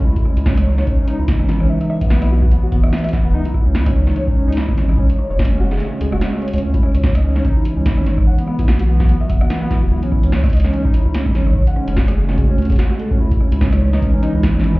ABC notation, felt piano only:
X:1
M:4/4
L:1/16
Q:"Swing 16ths" 1/4=146
K:C#m
V:1 name="Felt piano"
E E C E C c c c C C D E E C E C | e e e B, B, E F F B, F B, e e e B, B, | D E E C E C c c c C C D E E C E | C c c c C C F G G C G F C C c C |
C E C c c d C C D E E C E C c c | f B, B, E F F B, F B, e e f B, B, E F | E C E C c c d C C D E E C E C c | c f C C F G G C G C C G F F A C |
E E C E C c c d C C D E E C E C |]